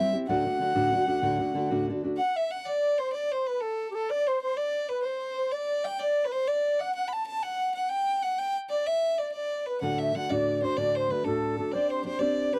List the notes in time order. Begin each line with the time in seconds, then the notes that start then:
Already playing: E5
0.00 G3 C4 E4 G4
0.13 C4 E4 G4
0.27 D2 A2 D3 A3 D4 F#4 F#5
0.45 D3 A3 D4 F#4
0.59 D3 A3 D4 F#4
0.75 D2 A2 D3 A3 D4 F#4
0.92 D3 A3 D4 F#4
1.06 D3 A3 D4 F#4
1.21 D2 A2 D3 A3 D4 F#4
1.39 D3 A3 D4 F#4
1.54 D3 A3 D4 F#4
1.70 D2 A2 D3 A3 D4 F#4
1.88 D3 A3 D4 F#4
2.03 D3 A3 D4 F#4
2.17 F#5
2.36 E5
2.51 F#5
2.66 D5
2.98 C5
3.13 D5
3.31 C5
3.46 B4
3.60 A4
3.90 G4
3.94 A4
4.09 D5
4.27 C5
4.42 C5
4.57 D5
4.89 B4
5.03 C5
5.37 C5
5.51 D5
5.84 G5
5.99 D5
6.24 B4
6.32 C5
6.47 D5
6.79 F#5
6.95 F#5
7.08 B5
7.13 A5
7.27 A5
7.42 F#5
7.75 F#5
7.89 G5
8.22 F#5
8.38 G5
8.69 D5
8.86 E5
9.18 D5
9.32 D5
9.66 B4
9.81 D2 A2 D3 A3 D4 F#4 F#5
9.98 E5
10.14 D3 A3 D4 F#4 F#5
10.29 D2 A2 D3 A3 D4 F#4 D5
10.61 D3 A3 D4 F#4 C5
10.76 D2 A2 D3 A3 D4 F#4 D5
10.95 C5
11.09 D3 A3 D4 F#4 B4
11.24 D2 A2 D3 A3 D4 F#4 A4
11.57 D3 A3 D4 F#4 A4
11.71 C4 D4 G4 C5 D5
11.90 C5
12.05 C4 D4 G4 C5
12.19 C4 D4 G4 C5 D5
12.53 D4 G4 B4 C5